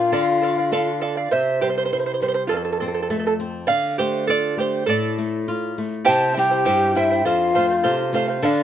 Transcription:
0.00 0.11 D4 medium
0.00 0.11 F4 medium
0.00 1.01 F4 medium
0.00 0.11 A#4 medium
0.00 0.11 D5 soft
0.00 0.12 F5 medium
0.00 1.01 F5 loud
0.12 1.27 D3 medium
0.12 0.41 A4 medium
0.12 0.42 D5 medium
0.12 0.42 F5 medium
0.42 0.56 A4 medium
0.42 0.57 D5 medium
0.42 0.56 F5 medium
0.57 0.71 D5 soft
0.57 0.72 F5 medium
0.71 1.29 D4 medium
0.71 1.29 F4 soft
0.71 1.00 A4 medium
0.71 1.29 A4 medium
0.71 1.00 D5 medium
0.71 1.01 F5 loud
1.01 1.16 A4 medium
1.01 1.16 D5 medium
1.01 1.16 F5 medium
1.17 1.31 D5 soft
1.17 1.31 F5 medium
1.31 2.47 C3 medium
1.31 1.59 C5 medium
1.31 1.62 E5 medium
1.61 1.90 G3 soft
1.61 1.68 G4 medium
1.61 1.68 C5 medium
1.69 1.76 C5 soft
1.78 1.84 C5 medium
1.85 1.91 C5 soft
1.92 2.20 E4 soft
1.92 1.98 C5 medium
1.99 2.05 C5 soft
2.06 2.13 C5 soft
2.14 2.21 C5 soft
2.22 2.49 G3 soft
2.22 2.27 C5 medium
2.28 2.33 C5 medium
2.34 2.42 C5 medium
2.47 3.65 F2 medium
2.47 2.55 F4 medium
2.47 2.55 A4 medium
2.56 2.64 A4 soft
2.65 2.71 A4 medium
2.72 2.79 A4 soft
2.80 3.09 C4 soft
2.80 2.87 A4 soft
2.88 2.93 A4 soft
2.94 3.01 A4 soft
3.02 3.09 A4 soft
3.10 3.38 A3 medium
3.10 3.17 A4 soft
3.19 3.26 A4 soft
3.27 3.33 A4 medium
3.40 3.68 C4 soft
3.67 4.84 D3 medium
3.67 3.95 D5 medium
3.67 3.98 F5 medium
3.98 4.27 A3 soft
3.98 4.26 G4 medium
3.98 4.29 C5 medium
4.27 4.57 F4 medium
4.27 4.55 A4 medium
4.27 4.56 D5 medium
4.57 4.86 A3 soft
4.57 4.85 G4 medium
4.57 4.89 C5 medium
4.86 6.02 A2 medium
4.86 5.72 A4 medium
4.86 5.73 D5 medium
5.18 5.46 A3 soft
5.48 5.76 F4 medium
5.78 6.06 A3 soft
6.05 6.64 C3 medium
6.05 6.33 E4 medium
6.05 6.35 G4 medium
6.05 6.34 C5 medium
6.05 6.32 E5 medium
6.05 6.33 G5 medium
6.05 6.34 A5 loud
6.10 6.36 C5 medium
6.34 6.83 G3 soft
6.34 6.84 C4 soft
6.34 6.49 E4 medium
6.34 6.84 E4 soft
6.34 6.96 G4 medium
6.34 6.49 C5 medium
6.34 6.49 E5 soft
6.34 6.48 G5 medium
6.39 6.98 G5 loud
6.50 6.64 E4 soft
6.50 6.65 C5 soft
6.50 6.65 G5 soft
6.65 7.23 G2 medium
6.65 6.95 E4 medium
6.65 6.95 G4 medium
6.65 6.95 C5 medium
6.65 6.94 E5 medium
6.65 6.95 G5 medium
6.95 7.19 G3 soft
6.95 7.19 C4 soft
6.95 7.25 E4 medium
6.95 7.19 E4 medium
6.95 7.10 E4 medium
6.95 7.10 C5 medium
6.95 7.10 E5 medium
6.95 7.27 E5 medium
6.95 7.09 G5 medium
7.10 7.25 E4 soft
7.10 7.24 C5 soft
7.10 7.25 G5 soft
7.24 7.82 F2 medium
7.24 8.13 F4 medium
7.24 7.53 A4 medium
7.24 7.54 C5 medium
7.24 8.14 F5 medium
7.24 7.54 F5 medium
7.54 8.02 A3 medium
7.54 8.02 C4 soft
7.54 8.03 F4 medium
7.54 7.69 A4 medium
7.54 7.68 C5 medium
7.54 7.67 F5 medium
7.68 7.82 C5 soft
7.68 7.83 F5 soft
7.83 8.42 C3 medium
7.83 8.13 A4 medium
7.83 8.13 C5 medium
7.83 8.13 F5 medium
8.13 8.37 A3 medium
8.13 8.37 C4 soft
8.13 8.37 F4 medium
8.13 8.28 A4 medium
8.13 8.28 C5 medium
8.13 8.27 F5 medium
8.28 8.43 C5 soft
8.28 8.43 F5 soft
8.43 8.63 D3 medium
8.43 8.63 D4 medium
8.43 8.63 A4 medium
8.43 8.63 D5 medium
8.43 8.63 F5 medium

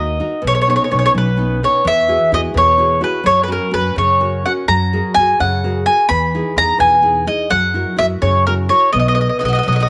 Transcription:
0.00 0.19 D#2 medium
0.00 0.18 A#3 medium
0.00 0.19 D#4 soft
0.00 0.19 F#4 soft
0.00 0.19 A#4 soft
0.00 0.42 D#5 medium
0.20 0.39 D#4 soft
0.20 0.39 F#4 soft
0.20 0.39 A#4 soft
0.42 0.75 B1 medium
0.42 0.89 B2 medium
0.47 0.53 C#5 medium
0.55 0.60 C#5 medium
0.61 0.67 C#5 medium
0.67 0.89 B3 soft
0.67 0.90 C#4 soft
0.67 0.90 D#4 soft
0.67 0.75 C#5 soft
0.76 0.82 C#5 medium
0.84 0.89 C#5 soft
0.91 1.07 B1 medium
0.91 1.29 B3 soft
0.91 1.29 C#4 soft
0.91 1.29 D#4 soft
0.91 0.97 C#5 soft
0.99 1.04 C#5 soft
1.06 1.11 C#5 medium
1.15 1.60 B1 medium
1.15 1.60 F#3 medium
1.15 1.64 B4 medium
1.37 1.62 B3 soft
1.37 1.62 C#4 soft
1.37 1.62 D#4 soft
1.63 1.81 B3 soft
1.63 1.81 C#4 soft
1.63 1.81 D#4 soft
1.63 1.84 C#5 medium
1.85 2.15 E2 medium
1.85 2.30 E3 medium
1.85 2.30 E5 medium
2.08 2.31 E4 soft
2.08 2.32 F#4 soft
2.08 2.33 G#4 soft
2.32 2.47 E2 medium
2.32 2.70 E4 soft
2.32 2.70 F#4 soft
2.32 2.71 G#4 soft
2.32 2.40 D#5 medium
2.54 3.01 E2 medium
2.54 3.00 B2 medium
2.54 3.03 C#5 medium
2.78 3.00 E4 soft
2.78 2.99 F#4 soft
2.78 3.00 G#4 medium
3.01 3.20 E4 soft
3.01 3.20 F#4 soft
3.01 3.20 G#4 soft
3.01 3.26 B4 medium
3.24 3.57 F#2 medium
3.24 3.71 F#3 medium
3.24 3.43 C#5 medium
3.43 3.50 B4 medium
3.48 3.70 C#4 soft
3.48 3.71 F#4 soft
3.48 3.70 A#4 medium
3.52 3.73 A#4 medium
3.71 3.89 F#2 medium
3.71 4.10 C#4 soft
3.71 4.11 F#4 soft
3.71 4.11 A#4 soft
3.71 3.98 B4 medium
3.96 4.44 F#2 medium
3.96 4.43 C#3 medium
3.96 4.47 C#5 medium
4.20 4.45 C#4 soft
4.20 4.44 F#4 soft
4.20 4.45 A#4 soft
4.46 4.65 C#4 soft
4.46 4.64 F#4 soft
4.46 4.65 A#4 soft
4.46 4.52 F#5 medium
4.68 5.00 F#2 medium
4.68 5.15 F#3 soft
4.68 5.13 A#5 medium
4.93 5.17 F#4 soft
4.93 5.17 G#4 soft
4.93 5.17 A#4 medium
5.14 5.32 F#2 medium
5.14 5.56 F#4 soft
5.14 5.40 G#5 medium
5.19 5.56 G#4 soft
5.19 5.56 A#4 soft
5.40 5.86 F#2 medium
5.40 5.86 C#3 medium
5.40 5.84 F#5 medium
5.64 5.85 F#4 soft
5.64 5.86 G#4 soft
5.64 5.86 A#4 soft
5.86 6.05 F#4 soft
5.86 6.06 G#4 soft
5.86 6.06 A#4 soft
5.86 6.08 G#5 medium
6.09 6.41 E2 medium
6.09 6.55 E3 medium
6.09 6.58 B5 medium
6.35 6.56 D#4 soft
6.35 6.56 E4 soft
6.35 6.57 G#4 soft
6.56 6.72 E2 medium
6.56 6.95 D#4 soft
6.56 6.95 E4 soft
6.56 6.96 G#4 soft
6.56 6.79 A#5 loud
6.78 7.26 E2 medium
6.78 7.25 B2 medium
6.78 7.24 G#5 medium
7.02 7.25 D#4 soft
7.02 7.26 E4 soft
7.02 7.26 G#4 medium
7.27 7.46 D#4 soft
7.27 7.46 E4 soft
7.27 7.46 G#4 soft
7.27 7.49 D#5 medium
7.50 7.82 F#2 medium
7.50 7.97 F#3 medium
7.50 7.98 F#5 medium
7.74 7.95 E4 soft
7.74 7.96 F#4 soft
7.74 7.96 A#4 soft
7.96 8.14 F#2 medium
7.96 8.36 E4 soft
7.96 8.36 F#4 soft
7.96 8.36 A#4 soft
7.96 8.05 E5 medium
8.22 8.69 F#2 medium
8.22 8.69 C#3 medium
8.22 8.45 C#5 medium
8.47 8.68 E4 soft
8.47 8.68 F#4 soft
8.47 8.53 A#4 medium
8.47 8.69 A#4 soft
8.69 8.88 E4 soft
8.69 8.88 F#4 soft
8.69 8.89 A#4 soft
8.69 8.92 C#5 medium
8.93 9.25 B1 medium
8.93 9.41 B3 soft
8.93 8.98 D#5 medium
8.99 9.07 D#5 medium
9.08 9.14 D#5 medium
9.15 9.39 B4 soft
9.15 9.40 C#5 soft
9.15 9.20 D#5 medium
9.15 9.41 D#5 medium
9.21 9.28 D#5 soft
9.29 9.38 D#5 soft
9.39 9.47 F#4 soft
9.39 9.80 B4 soft
9.39 9.81 C#5 soft
9.39 9.44 D#5 soft
9.39 9.81 D#5 soft
9.43 9.58 B1 medium
9.43 9.52 D#5 medium
9.48 9.54 F#4 soft
9.53 9.61 F#4 soft
9.53 9.57 D#5 medium
9.59 9.67 D#5 medium
9.63 9.89 B1 medium
9.63 9.89 F#3 medium
9.63 9.69 F#4 soft
9.68 9.75 D#5 medium
9.72 9.78 F#4 soft
9.72 9.81 D#5 soft
9.80 9.86 F#4 soft
9.80 9.89 D#5 soft

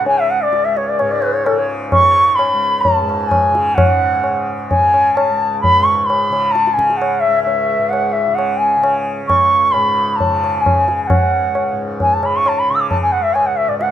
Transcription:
0.00 0.50 C#2 medium
0.00 1.00 G#2 medium
0.00 1.51 C#3 medium
0.06 0.20 G#5 loud
0.06 tabla tin medium
0.19 0.32 E5 medium
0.30 0.43 F#5 medium
0.42 0.66 D5 medium
0.51 2.53 C#2 medium
0.51 tabla te medium
0.64 0.78 E5 medium
0.77 0.90 C#5 medium
0.77 tabla te medium
0.89 1.01 D5 medium
0.99 3.01 G#2 medium
0.99 1.13 C#5 medium
0.99 tabla na medium
1.11 1.23 D5 medium
1.22 1.35 B4 medium
1.22 tabla na medium
1.33 1.47 C#5 medium
1.46 1.60 A4 medium
1.46 tabla na medium
1.51 2.02 C#3 medium
1.58 1.70 C#5 medium
1.92 2.37 C#6 loud
1.92 tabla na medium
1.92 tabla ge medium
2.02 3.51 C#3 medium
2.35 2.83 B5 loud
2.35 tabla na medium
2.54 5.29 C#2 medium
2.81 3.29 A5 medium
2.81 tabla tin medium
2.81 tabla ge medium
3.01 3.78 G#2 medium
3.09 tabla na medium
3.28 3.76 G#5 medium
3.28 tabla na medium
3.28 tabla ge medium
3.51 4.29 C#3 medium
3.51 tabla te medium
3.75 5.79 G#2 soft
3.75 4.46 F#5 medium
3.75 tabla na medium
3.75 tabla ge medium
4.24 tabla na medium
4.29 4.78 C#3 medium
4.70 5.16 G#5 medium
4.70 tabla tin medium
4.70 tabla ge medium
4.78 6.30 C#3 medium
4.94 tabla na medium
5.15 5.61 A5 medium
5.15 tabla na medium
5.30 7.27 C#2 medium
5.61 5.85 B5 loud
5.61 tabla tin medium
5.61 tabla ge medium
5.79 7.77 G#2 medium
5.84 6.07 C#6 medium
6.06 6.53 B5 medium
6.10 tabla na medium
6.30 6.77 C#3 medium
6.30 tabla na medium
6.51 6.75 A5 medium
6.51 tabla te medium
6.67 tabla te medium
6.73 8.27 C#3 medium
6.73 6.98 G#5 medium
6.79 tabla ke medium
6.90 tabla te soft
6.97 7.21 F#5 medium
7.02 tabla na medium
7.20 7.42 E5 medium
7.28 9.26 C#2 medium
7.43 7.91 E5 medium
7.47 tabla tin medium
7.78 9.75 G#2 medium
7.89 8.14 F#5 medium
7.89 tabla na medium
8.12 8.36 E5 medium
8.27 8.77 C#3 medium
8.35 8.59 F#5 medium
8.35 tabla na medium
8.57 9.04 G#5 medium
8.77 10.25 C#3 medium
8.84 tabla na medium
9.26 11.22 C#2 medium
9.26 9.73 C#6 loud
9.26 tabla na medium
9.26 tabla ge medium
9.72 11.71 G#2 medium
9.72 10.18 B5 medium
9.72 tabla na medium
10.16 10.62 A5 medium
10.20 tabla tin medium
10.20 tabla ge medium
10.25 10.73 C#3 medium
10.44 tabla na medium
10.61 11.02 G#5 medium
10.66 tabla na medium
10.66 tabla ge medium
10.73 12.22 C#3 medium
10.88 tabla te medium
11.04 11.76 F#5 medium
11.04 11.09 G#5 soft
11.10 tabla na medium
11.10 tabla ge medium
11.22 13.18 C#2 medium
11.55 tabla na medium
11.72 13.67 G#2 medium
12.00 12.15 G#5 medium
12.00 tabla tin medium
12.00 tabla ge medium
12.13 12.27 A5 medium
12.22 12.70 C#3 medium
12.22 12.38 B5 medium
12.22 tabla na medium
12.36 12.50 C#6 loud
12.46 12.60 A5 medium
12.46 tabla na medium
12.59 12.72 B5 medium
12.70 13.91 C#3 medium
12.70 12.77 C#6 medium
12.75 12.82 E6 medium
12.80 12.89 D6 medium
12.90 13.01 A5 loud
12.90 tabla tin medium
12.90 tabla ge medium
13.02 13.13 G#5 medium
13.12 13.24 F#5 medium
13.18 13.91 C#2 medium
13.23 13.35 E5 medium
13.34 13.48 G#5 medium
13.34 tabla na medium
13.46 13.58 F#5 medium
13.56 13.70 E5 medium
13.68 13.91 G#2 medium
13.68 13.78 D5 medium
13.78 13.91 F#5 medium
13.78 tabla te medium

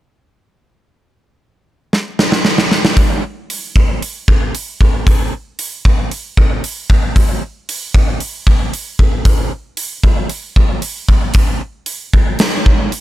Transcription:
1.93 snare medium
2.19 snare medium
2.32 snare medium
2.45 snare medium
2.58 snare medium
2.71 snare medium
2.85 snare loud
2.97 kick medium
2.97 open hi-hat soft
3.50 open hi-hat medium
3.76 kick medium
4.02 open hi-hat soft
4.28 kick medium
4.55 open hi-hat soft
4.81 kick medium
5.07 kick medium
5.07 open hi-hat soft
5.59 open hi-hat medium
5.85 kick medium
6.11 open hi-hat soft
6.37 kick medium
6.64 open hi-hat soft
6.90 kick medium
7.16 kick medium
7.16 open hi-hat soft
7.69 open hi-hat medium
7.94 kick medium
8.20 open hi-hat soft
8.47 kick medium
8.73 open hi-hat soft
8.99 kick medium
9.25 kick loud
9.25 open hi-hat soft
9.77 open hi-hat medium
10.04 kick medium
10.29 open hi-hat soft
10.56 kick medium
10.82 open hi-hat soft
11.09 kick medium
11.34 kick loud
11.34 open hi-hat soft
11.86 open hi-hat medium
12.13 kick medium
12.39 snare loud
12.39 open hi-hat soft
12.66 kick medium
12.92 open hi-hat soft

